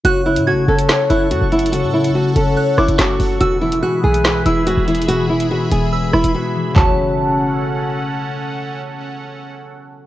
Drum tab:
HH |x--------x-----------x--------x-----x-----x-x-x-|x--------x--------x--------------x--x-----o-----|x--------x-----------x--------x-----x-----x-x-x-|x--------x--------x--------------x--------------|
CP |------------------------x-----------------------|------------------------------------x-----------|------------------------x-----------------------|------------------------------------------------|
SD |------------------------o-----------------------|------------------------------r-----o-----------|------------------------o-----------------------|------------------------------r-----------------|
FT |------------------------------------------------|------------------------------------------------|------------------------------------------------|------------------------------------------------|
BD |------------------------------------------------|------------------------------------------------|------------------------------------------------|------------------------------------------------|

HH |------------------------------------------------|------------------------------------------------|
CP |x-----------------------------------------------|------------------------------------------------|
SD |------------------------------------------------|------------------------------------------------|
FT |o-----------------------------------------------|------------------------------------------------|
BD |o-----------------------------------------------|------------------------------------------------|